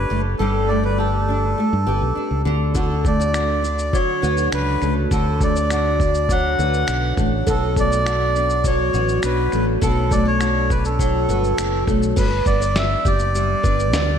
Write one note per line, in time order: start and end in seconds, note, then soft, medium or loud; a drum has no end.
0.00 0.39 G3 medium
0.00 1.28 D4 medium
0.00 0.39 G4 medium
0.00 0.21 B4 medium
0.10 0.35 F#1 medium
0.10 0.69 A3 medium
0.10 0.24 A4 medium
0.39 1.54 G1 medium
0.39 2.52 G3 medium
0.39 0.97 G4 medium
0.39 0.69 A4 medium
0.39 0.67 A4 medium
0.68 1.58 A3 soft
0.68 0.84 D5 medium
0.83 0.98 B4 medium
0.83 1.25 D5 medium
0.98 1.85 G4 medium
0.98 2.42 A4 medium
1.28 2.15 D4 medium
1.58 3.04 A3 medium
1.73 1.85 G2 medium
1.87 1.99 G1 medium
1.87 2.52 G4 medium
1.87 2.01 B4 medium
2.02 2.14 B1 medium
2.15 3.62 D4 soft
2.15 muted fingered electric bass stroke soft
2.31 2.43 C#2 medium
2.45 3.91 D2 medium
2.45 2.74 D3 medium
2.45 2.60 A4 medium
2.75 5.11 D3 medium
2.75 3.33 F#4 medium
2.75 3.03 A4 medium
2.75 3.06 A4 medium
2.75 kick medium
2.75 shaker medium
3.04 4.82 A3 medium
3.04 3.97 D5 medium
3.04 kick medium
3.04 shaker soft
3.20 3.61 D5 medium
3.20 shaker soft
3.33 4.22 F#4 medium
3.33 finger snap medium
3.33 shaker medium
3.63 4.52 D4 medium
3.63 shaker soft
3.79 shaker soft
3.93 6.30 F#3 medium
3.93 4.49 C#5 medium
3.93 kick medium
3.93 shaker medium
4.22 4.47 D2 medium
4.22 5.12 F#4 medium
4.22 4.37 B4 medium
4.22 shaker soft
4.37 shaker soft
4.52 4.76 C#2 medium
4.52 6.00 D4 medium
4.52 4.94 B4 medium
4.52 finger snap loud
4.52 shaker medium
4.82 5.06 C#2 medium
4.82 5.41 A3 medium
4.82 4.96 A4 medium
4.82 finger snap soft
4.82 shaker soft
5.11 6.55 D2 medium
5.11 7.47 D3 medium
5.11 5.70 F#4 medium
5.11 5.39 A4 medium
5.11 5.42 A4 medium
5.11 kick medium
5.11 shaker medium
5.41 7.18 A3 medium
5.41 5.71 D5 medium
5.41 kick medium
5.41 shaker soft
5.55 5.97 D5 medium
5.55 shaker soft
5.70 6.60 F#4 medium
5.70 6.32 D5 medium
5.70 finger snap medium
5.70 shaker medium
6.00 6.88 D4 medium
6.00 kick medium
6.00 shaker soft
6.14 shaker soft
6.29 8.65 F#3 medium
6.29 7.15 F#5 medium
6.29 kick medium
6.29 shaker medium
6.59 6.83 D2 medium
6.59 7.47 F#4 medium
6.59 6.72 B4 medium
6.59 shaker soft
6.74 shaker soft
6.88 7.12 B1 medium
6.88 8.36 D4 soft
6.88 finger snap loud
6.88 shaker medium
7.17 7.42 A1 medium
7.17 7.76 A3 soft
7.17 7.31 A4 medium
7.17 finger snap soft
7.17 kick medium
7.17 shaker soft
7.47 8.90 B1 medium
7.47 9.81 B2 medium
7.47 8.05 F#4 medium
7.47 7.75 A4 loud
7.47 7.76 A4 medium
7.47 kick medium
7.47 shaker medium
7.76 9.52 A3 medium
7.76 8.69 D5 loud
7.76 kick medium
7.76 shaker soft
7.90 8.32 D5 medium
7.90 shaker soft
8.06 8.93 F#4 medium
8.06 finger snap medium
8.06 shaker medium
8.36 9.23 D4 medium
8.36 shaker soft
8.50 shaker soft
8.64 10.98 F#3 medium
8.64 9.20 C#5 medium
8.64 kick medium
8.64 shaker medium
8.93 9.18 A1 medium
8.93 9.81 F#4 medium
8.93 9.07 B4 medium
8.93 shaker soft
9.09 shaker soft
9.23 9.48 B1 medium
9.23 10.70 D4 medium
9.23 9.65 B4 medium
9.23 finger snap loud
9.23 shaker medium
9.52 9.77 A1 medium
9.52 10.10 A3 medium
9.52 9.66 A4 medium
9.52 finger snap soft
9.52 shaker soft
9.81 11.25 B1 medium
9.81 12.17 B2 medium
9.81 10.39 F#4 medium
9.81 10.10 A4 loud
9.81 10.13 A4 medium
9.81 kick medium
9.81 shaker medium
10.11 11.86 A3 medium
10.11 10.27 D5 medium
10.11 kick medium
10.11 shaker soft
10.25 10.67 D4 medium
10.25 10.72 C#5 medium
10.40 11.28 F#4 medium
10.40 finger snap medium
10.40 shaker medium
10.70 11.57 D4 medium
10.70 10.84 B4 medium
10.70 kick medium
10.70 shaker soft
10.85 11.84 A4 medium
10.85 shaker soft
10.99 12.23 F#3 medium
10.99 kick medium
10.99 shaker medium
11.29 11.53 G1 medium
11.29 12.23 F#4 medium
11.29 11.43 B4 medium
11.29 shaker soft
11.44 shaker soft
11.57 11.83 F#1 medium
11.57 12.76 D4 soft
11.57 finger snap loud
11.57 shaker medium
11.87 12.12 B1 medium
11.87 12.23 A3 medium
11.87 12.02 A4 medium
11.87 finger snap soft
11.87 kick medium
11.87 shaker soft
12.02 shaker soft
12.16 12.41 G1 medium
12.16 12.45 B4 loud
12.16 12.45 B4 medium
12.16 kick medium
12.16 crash medium
12.16 shaker medium
12.46 12.95 G1 medium
12.46 13.93 B3 medium
12.46 12.77 D5 medium
12.46 kick medium
12.46 shaker soft
12.60 13.02 D5 medium
12.60 shaker soft
12.76 13.64 D4 medium
12.76 13.07 E5 medium
12.76 snare loud
12.76 shaker medium
13.05 13.54 F#1 medium
13.05 14.19 G4 medium
13.05 14.19 D5 medium
13.05 kick medium
13.05 shaker soft
13.19 shaker soft
13.35 14.19 G3 medium
13.35 shaker medium
13.63 13.94 G1 medium
13.63 14.19 D4 medium
13.63 13.78 B4 medium
13.63 kick medium
13.63 shaker soft
13.79 shaker soft
13.93 14.18 D2 medium
13.93 14.19 B3 medium
13.93 snare loud
13.93 shaker medium